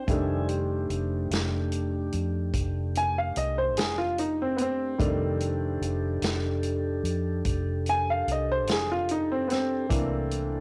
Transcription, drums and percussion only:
0.08 kick, closed hi-hat
0.49 closed hi-hat
0.90 closed hi-hat
1.31 snare, closed hi-hat
1.72 closed hi-hat
2.12 closed hi-hat
2.53 kick, closed hi-hat
2.95 closed hi-hat
3.36 closed hi-hat
3.77 snare, closed hi-hat
4.18 closed hi-hat
4.58 closed hi-hat
5.00 kick, closed hi-hat
5.41 closed hi-hat
5.82 closed hi-hat
6.22 snare, closed hi-hat
6.63 closed hi-hat
7.05 closed hi-hat
7.45 kick, closed hi-hat
7.86 closed hi-hat
8.28 closed hi-hat
8.67 snare, closed hi-hat
9.08 closed hi-hat
9.50 snare, closed hi-hat
9.90 kick, closed hi-hat
10.31 closed hi-hat

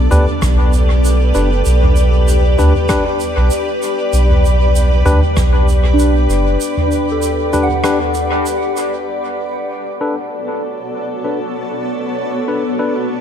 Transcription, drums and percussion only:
0.12 mid tom, shaker
0.27 mid tom
0.42 kick, cross-stick, shaker
0.73 shaker
1.05 shaker
1.35 shaker
1.65 shaker
1.83 mid tom
1.96 shaker
2.28 shaker
2.58 mid tom, shaker
2.76 mid tom
2.89 kick, cross-stick, shaker
3.20 shaker
3.51 shaker
3.82 shaker
4.13 shaker
4.30 mid tom
4.45 shaker
4.76 shaker
5.06 mid tom, shaker
5.23 mid tom
5.37 kick, cross-stick, shaker
5.68 shaker
5.99 shaker
6.30 shaker
6.61 shaker
6.77 mid tom
6.91 shaker
7.22 shaker
7.53 mid tom, shaker
7.69 mid tom
7.84 cross-stick, shaker
8.14 shaker
8.46 shaker
8.77 shaker
9.08 shaker
9.39 shaker
9.70 shaker
10.02 shaker
10.32 shaker
10.63 shaker
10.93 shaker
11.55 shaker
11.86 shaker
12.18 shaker
12.48 shaker
12.79 shaker
13.10 shaker

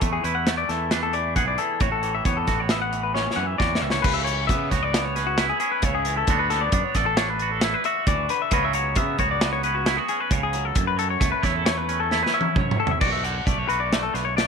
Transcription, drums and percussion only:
0.01 kick, closed hi-hat
0.24 closed hi-hat
0.47 snare, closed hi-hat
0.69 snare, closed hi-hat
0.91 snare, closed hi-hat
1.13 closed hi-hat
1.36 kick, closed hi-hat
1.58 closed hi-hat
1.80 kick, closed hi-hat
2.03 closed hi-hat
2.25 kick, closed hi-hat
2.47 kick, snare, closed hi-hat
2.69 snare, closed hi-hat
2.93 closed hi-hat
3.16 snare
3.31 snare
3.60 kick, snare
3.75 snare
3.90 snare
4.04 kick, crash
4.27 closed hi-hat
4.49 kick, closed hi-hat
4.71 kick, snare, closed hi-hat
4.94 snare, closed hi-hat
5.16 snare, closed hi-hat
5.38 snare, closed hi-hat
5.60 closed hi-hat
5.82 kick, closed hi-hat
6.05 closed hi-hat
6.27 kick, closed hi-hat
6.50 snare, closed hi-hat
6.72 kick, closed hi-hat
6.95 kick, snare, closed hi-hat
7.17 snare, closed hi-hat
7.39 closed hi-hat
7.61 snare, closed hi-hat
7.84 closed hi-hat
8.07 kick, closed hi-hat
8.29 closed hi-hat
8.51 kick, closed hi-hat
8.73 closed hi-hat
8.95 kick, closed hi-hat
9.18 kick, closed hi-hat
9.41 snare, closed hi-hat
9.63 closed hi-hat
9.86 snare, closed hi-hat
10.08 closed hi-hat
10.31 kick, closed hi-hat
10.53 closed hi-hat
10.75 kick, closed hi-hat
10.99 closed hi-hat
11.21 kick, snare, closed hi-hat
11.43 kick, snare, closed hi-hat
11.66 snare, closed hi-hat
11.89 closed hi-hat
12.11 snare
12.26 snare
12.41 high tom
12.56 kick, mid tom
12.71 mid tom
12.87 floor tom
13.01 kick, crash
13.25 closed hi-hat
13.47 kick, closed hi-hat
13.70 closed hi-hat
13.92 snare, closed hi-hat
14.15 snare, closed hi-hat
14.38 snare, closed hi-hat

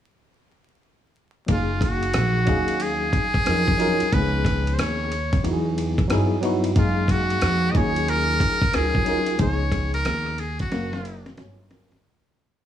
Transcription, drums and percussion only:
1.48 kick, ride
1.81 kick, cross-stick, ride
2.03 ride
2.14 cross-stick, hi-hat pedal, ride
2.47 kick, ride
2.68 ride
2.80 ride
3.13 kick, ride
3.34 kick, cross-stick, ride
3.46 cross-stick, hi-hat pedal, ride
3.68 kick
3.80 ride
4.00 ride
4.13 kick, ride
4.45 kick, cross-stick, ride
4.67 ride
4.79 cross-stick, hi-hat pedal, ride
5.12 ride
5.33 kick, ride
5.45 ride
5.78 ride
5.98 kick, cross-stick, ride
6.10 cross-stick, hi-hat pedal, ride
6.43 ride
6.64 ride
6.76 kick, ride
7.08 kick, cross-stick, ride
7.30 ride
7.41 cross-stick, hi-hat pedal, ride
7.75 kick, ride
7.96 ride
8.08 ride
8.40 kick, ride
8.62 kick, cross-stick, ride
8.73 cross-stick, hi-hat pedal, ride
8.95 kick
9.06 ride
9.26 ride
9.39 kick, ride
9.72 kick, cross-stick, ride
9.94 ride
10.05 cross-stick, hi-hat pedal, ride
10.26 cross-stick
10.38 ride
10.59 kick, ride
10.72 snare, ride
10.93 snare
11.05 ride
11.26 snare, ride
11.37 snare, hi-hat pedal, ride
11.71 snare, ride
11.91 snare, ride

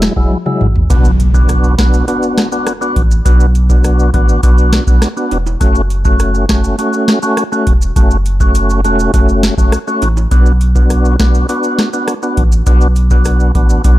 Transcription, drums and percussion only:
0.02 cross-stick, snare
0.17 kick
0.31 high tom
0.46 mid tom
0.61 mid tom
0.76 floor tom
0.90 kick, closed hi-hat, maracas
1.05 maracas
1.20 closed hi-hat, maracas
1.34 kick, maracas
1.49 cross-stick, closed hi-hat, maracas
1.64 maracas
1.79 kick, cross-stick, snare, closed hi-hat
1.94 maracas
2.08 closed hi-hat, maracas
2.23 maracas
2.38 cross-stick, snare, closed hi-hat
2.52 maracas
2.67 cross-stick, closed hi-hat, maracas
2.82 maracas
2.96 kick, closed hi-hat
3.11 maracas
3.26 kick, closed hi-hat, maracas
3.40 maracas
3.55 closed hi-hat, maracas
3.70 kick, maracas
3.84 cross-stick, closed hi-hat, maracas
3.99 maracas
4.14 kick, closed hi-hat
4.29 maracas
4.43 kick, closed hi-hat, maracas
4.58 maracas
4.73 cross-stick, snare, closed hi-hat
4.87 kick, maracas
5.02 cross-stick, snare, closed hi-hat, maracas
5.17 maracas
5.31 closed hi-hat, high timbale
5.46 high timbale, maracas
5.61 kick, closed hi-hat, maracas
5.75 maracas
5.90 closed hi-hat, maracas
6.05 kick, maracas
6.19 cross-stick, closed hi-hat, maracas
6.35 maracas
6.49 kick, cross-stick, snare, closed hi-hat
6.64 maracas
6.79 closed hi-hat, maracas
6.93 maracas
7.08 cross-stick, snare, closed hi-hat
7.23 maracas
7.37 cross-stick, closed hi-hat, maracas
7.52 maracas
7.67 kick, closed hi-hat
7.82 maracas
7.96 kick, closed hi-hat, maracas
8.11 maracas
8.26 closed hi-hat, maracas
8.40 kick, maracas
8.55 closed hi-hat, maracas
8.70 maracas
8.85 closed hi-hat, maracas
9.00 maracas
9.14 kick, closed hi-hat, maracas
9.29 maracas
9.43 cross-stick, snare, closed hi-hat, maracas
9.58 kick, maracas
9.72 cross-stick, closed hi-hat, maracas
9.88 maracas
10.02 closed hi-hat, high timbale, maracas
10.17 high timbale, maracas
10.31 kick, closed hi-hat, maracas
10.46 maracas
10.61 closed hi-hat, maracas
10.76 kick, maracas
10.90 cross-stick, closed hi-hat, maracas
11.05 maracas
11.20 kick, cross-stick, snare, closed hi-hat
11.35 maracas
11.49 closed hi-hat, maracas
11.64 maracas
11.79 cross-stick, snare, closed hi-hat
11.93 maracas
12.08 cross-stick, closed hi-hat, maracas
12.23 maracas
12.37 kick, closed hi-hat
12.52 maracas
12.67 kick, closed hi-hat, maracas
12.81 maracas
12.96 closed hi-hat, maracas
13.11 kick, maracas
13.25 cross-stick, closed hi-hat, maracas
13.40 maracas
13.55 kick, closed hi-hat
13.70 maracas
13.84 kick, closed hi-hat, maracas

